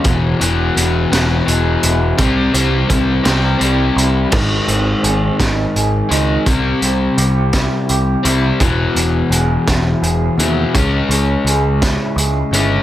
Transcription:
0.04 E1 E2 B2 E3, kick, closed hi-hat
0.40 E1 E2 B2 E3, closed hi-hat
0.75 E1 E2 B2 E3, closed hi-hat
1.11 E1 E2 B2 E3 B3, snare, closed hi-hat
1.46 E1 E2 B2 E3 G#3, closed hi-hat
1.83 E1 E4, closed hi-hat
2.17 C2 C3 G3 C4, kick, closed hi-hat
2.53 C2 C3 E3 G3 C4, closed hi-hat
2.89 C2 C3 E3 G3 C4, kick, closed hi-hat
3.23 C2 C3 G3 C4, snare, closed hi-hat
3.58 C2 C3 G3 C4, closed hi-hat
3.96 C2 E4, closed hi-hat
4.30 G#1 G#2 D#3 G#3, kick, crash
4.68 G#1 C4, closed hi-hat
5.03 G#1 G#4, closed hi-hat
5.39 G#1 D#4, kick, snare, closed hi-hat
5.76 G#1 G#4, closed hi-hat
6.09 C#2 G#2 D#3 G#3 D#4, closed hi-hat
6.46 C2 C3 G3 C4, kick, closed hi-hat
6.81 C2 C4, closed hi-hat
7.17 C2 G4, closed hi-hat
7.53 E4, kick, snare, closed hi-hat
7.89 C2 G4, closed hi-hat
8.23 C2 C3 G3 C4 E4, closed hi-hat
8.59 E1 E2 B2 E3, kick, closed hi-hat
8.94 E1 B3, closed hi-hat
9.30 E1 G#4, closed hi-hat
9.67 E1 E4, kick, snare, closed hi-hat
10.02 E1 G#4, closed hi-hat
10.38 D#2 E2 B2 E3 E4, closed hi-hat
10.74 C#2 C#3 G#3 C#4, kick, closed hi-hat
11.09 C#2 C#4, closed hi-hat
11.44 C#2 G#4, closed hi-hat
11.82 E4, kick, snare, closed hi-hat
12.16 C#2 G#4, closed hi-hat
12.51 G1 G#3 C#4 E4, closed hi-hat
12.56 C#3

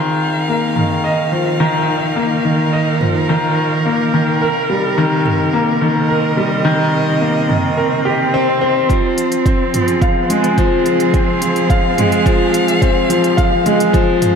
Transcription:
Already playing: D#3 C4 G#4 F5
0.26 D#4 A#4
0.48 A#3
0.76 D#3, mid tom
1.04 D#5
1.32 F3
1.60 D#3
2.16 A#3
2.45 D#3
2.73 D#5
3.01 F3, mid tom
3.29 D#3
3.85 A#3
4.14 D#3
4.41 C3 A#4
4.70 G3
4.78 C4
4.98 D#3
5.26 mid tom
5.53 A#3
5.81 D#3 D#5
6.09 A#4
6.37 G3
6.65 D#3
7.21 A#3
7.49 D#3, mid tom
7.77 A#4
8.05 G4
8.34 C4
8.61 C4
8.89 F3, kick, closed hi-hat
9.18 closed hi-hat
9.32 closed hi-hat
9.46 C4, kick, closed hi-hat
9.74 F3, closed hi-hat, mid tom
9.84 G#4
9.88 closed hi-hat
10.02 F5, kick, closed hi-hat
10.30 G#3, closed hi-hat
10.44 closed hi-hat
10.58 F3, kick, closed hi-hat
10.86 closed hi-hat
11.00 closed hi-hat
11.14 C4, kick, closed hi-hat
11.25 F5
11.42 F3, closed hi-hat
11.56 closed hi-hat
11.70 F5, kick, closed hi-hat
11.98 G#3, closed hi-hat, mid tom
12.12 closed hi-hat
12.26 F3, kick, closed hi-hat
12.54 closed hi-hat
12.68 closed hi-hat
12.82 C4, kick, closed hi-hat
13.09 F3, closed hi-hat
13.24 closed hi-hat
13.37 F5, kick, closed hi-hat
13.66 G#3, closed hi-hat
13.80 closed hi-hat
13.93 F3, kick, closed hi-hat
14.22 closed hi-hat, mid tom

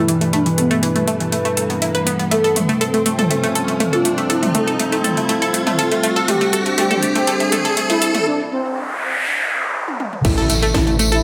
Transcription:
Already playing: E3 G3 B3 D4 E4 G4 B4, riser
0.08 E3, open hi-hat
0.21 A3, closed hi-hat
0.33 A3 D4 A4, closed hi-hat
0.46 E3, closed hi-hat
0.58 A3 B3, open hi-hat
0.71 A3, closed hi-hat
0.83 E3, closed hi-hat
0.96 A3, closed hi-hat
1.07 A3, open hi-hat
1.20 E3, closed hi-hat
1.32 A3, closed hi-hat
1.45 A3, closed hi-hat
1.57 A4, open hi-hat
1.70 B3, closed hi-hat
1.82 E4, closed hi-hat
1.95 B4, closed hi-hat
2.07 B3, open hi-hat
2.19 B3, closed hi-hat
2.31 A3 C4 F4 A4, closed hi-hat
2.44 A4, closed hi-hat
2.48 F4
2.56 A3, mid tom, open hi-hat
2.69 A3, closed hi-hat
2.81 A4, closed hi-hat
2.94 A3, closed hi-hat
3.06 A3, open hi-hat
3.19 A4, closed hi-hat, mid tom
3.30 A3, closed hi-hat
3.43 A3, closed hi-hat
3.55 A4, open hi-hat
3.60 A4
3.68 A3, closed hi-hat
3.80 A3, closed hi-hat, mid tom
3.93 F4 A4, closed hi-hat
4.05 A3, open hi-hat
4.18 A3, closed hi-hat
4.30 E4 A4, closed hi-hat
4.43 A3, closed hi-hat, mid tom
4.55 A3 A4, open hi-hat
4.67 A4, closed hi-hat
4.79 A3, closed hi-hat
4.92 A3, closed hi-hat
5.04 A4, mid tom, open hi-hat
5.17 A3, closed hi-hat
5.29 A3, closed hi-hat
5.42 A4, closed hi-hat
5.54 A3, open hi-hat
5.67 A3, closed hi-hat, mid tom
5.79 A4, closed hi-hat
5.92 A3, closed hi-hat
6.03 A3, open hi-hat
6.16 A4, closed hi-hat
6.28 G3 A3 D4 G4 C5, closed hi-hat, mid tom
6.41 A3, closed hi-hat
6.53 A4, open hi-hat
6.66 A3, closed hi-hat
6.78 A3 G4, closed hi-hat
6.91 A4, closed hi-hat, mid tom
7.03 A3, open hi-hat
7.15 A3 G4, closed hi-hat
7.27 A4, closed hi-hat
7.40 A3, closed hi-hat
7.52 A3, mid tom, open hi-hat
7.65 A4, closed hi-hat
7.77 A3, closed hi-hat
7.90 A3 E4, closed hi-hat
8.02 A4, open hi-hat
8.14 A3, closed hi-hat, mid tom
8.26 D4, noise sweep
8.51 C4
9.88 high tom
10.00 mid tom
10.13 mid tom
10.25 A1 A3 D4 E4 A4, kick, closed hi-hat, crash, tambourine, impact
10.38 A4 A5, closed hi-hat, tambourine
10.50 A3 A4, open hi-hat, tambourine
10.62 A3 G4 A4 C5, closed hi-hat, tambourine
10.74 E4 A4 A5, kick, snare, closed hi-hat, mid tom, tambourine
10.87 A3 A4, closed hi-hat, tambourine
10.99 A3 A4, open hi-hat, tambourine
11.12 E4 A4 A5, closed hi-hat, tambourine

